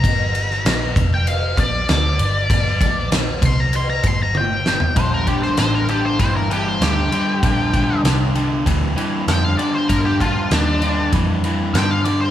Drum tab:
RD |x-x-x-x-x-x-x-x-|x-x-x-x-x-x-----|x-x-x-x-x-x-x-x-|x-x-x-x-x-x-x-x-|
SD |---oo-------o---|----o---------o-|---oo-------o---|----o-------o---|
T1 |----------------|------------o---|----------------|----------------|
FT |----------------|---------------o|----------------|----------------|
BD |o-----o---o-----|o-o---o---o-----|o-o-----o-------|o-o-----o-------|

RD |x-x-x-x-x-x-x-x-|
SD |----o-------o---|
T1 |----------------|
FT |----------------|
BD |o-o-----o-------|